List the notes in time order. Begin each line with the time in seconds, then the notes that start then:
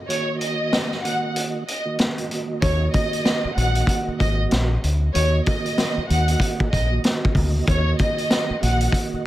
0.08 D#3 A#3 F#4 C#5 D#5, closed hi-hat
0.41 D#5, closed hi-hat
0.73 snare, closed hi-hat
0.92 snare
1.03 D#3 A#3 F#4 D#5 F#5, closed hi-hat
1.36 closed hi-hat
1.67 D#5, closed hi-hat
1.85 D#3 A#3 F#4 D#5
1.99 D#3 A#3 F#4 D#5, snare, closed hi-hat
2.18 closed hi-hat
2.31 D#3 A#3 F#4 D#5, closed hi-hat
2.62 D#2 D#3 A#3 F#4 C#5 D#5, kick, closed hi-hat
2.93 D#5, kick, closed hi-hat
3.13 closed hi-hat
3.25 snare, closed hi-hat
3.45 muted fingered electric bass stroke
3.56 A#1 D#3 A#3 F#4 D#5 F#5, closed hi-hat
3.75 closed hi-hat
3.87 kick, closed hi-hat
4.08 muted fingered electric bass stroke
4.20 G#1 D#5, kick, closed hi-hat
4.51 A#1, snare, closed hi-hat
4.84 D2, closed hi-hat
5.14 D#2 D#3 A#3 F#4 C#5 D#5, closed hi-hat
5.46 D#5, kick, closed hi-hat
5.66 closed hi-hat
5.78 snare, closed hi-hat
5.97 muted fingered electric bass stroke
6.10 D#2 D#3 A#3 F#4 D#5 F#5, closed hi-hat
6.28 closed hi-hat
6.40 kick, closed hi-hat
6.60 muted fingered electric bass stroke, kick
6.72 A#1 D#5, kick, closed hi-hat
6.91 D#3 A#3 F#4 D#5
7.04 D#3 A#3 F#4 D#5, snare, closed hi-hat
7.25 kick
7.35 D2 D#3 A#3 F#4 D#5, kick, open hi-hat
7.68 D#2 D#3 A#3 F#4 C#5 D#5, kick, closed hi-hat
7.99 D#5, kick, closed hi-hat
8.18 closed hi-hat
8.30 snare, closed hi-hat
8.50 muted fingered electric bass stroke
8.61 A#1 D#3 A#3 F#4 D#5 F#5, closed hi-hat
8.81 closed hi-hat
8.92 kick, closed hi-hat
9.13 muted fingered electric bass stroke